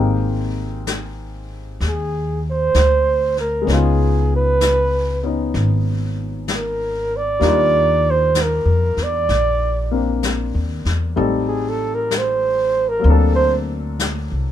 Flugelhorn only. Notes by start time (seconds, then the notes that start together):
1.88 G#4
2.51 C5
3.40 A#4
3.74 G#4
4.36 B4
6.56 A#4
7.17 D5
8.11 C5
8.42 A#4
9.03 D5
11.48 G#4
11.69 A4
11.95 A#4
12.18 C5
12.89 A#4
13.12 A4
13.35 C5